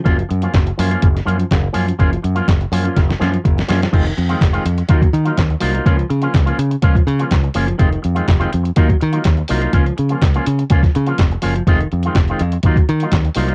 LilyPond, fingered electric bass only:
\new Staff \with { instrumentName = "Fingered electric bass" } { \clef bass \time 4/4 \key des \major \tempo 4 = 124 ges,,8 ges,8 ges,,8 ges,8 ges,,8 ges,8 ges,,8 ges,8 | ges,,8 ges,8 ges,,8 ges,8 ges,,8 ges,8 ges,,8 ges,8 | f,,8 f,8 f,,8 f,8 ees,8 ees8 ees,8 c,8 | des,8 des8 des,8 des8 des,8 des8 des,8 ges,,8 |
f,,8 f,8 f,,8 f,8 ees,8 ees8 ees,8 c,8 | des,8 des8 des,8 des8 des,8 des8 f,,8 ges,,8 | f,,8 f,8 f,,8 f,8 ees,8 ees8 ees,8 c,8 | }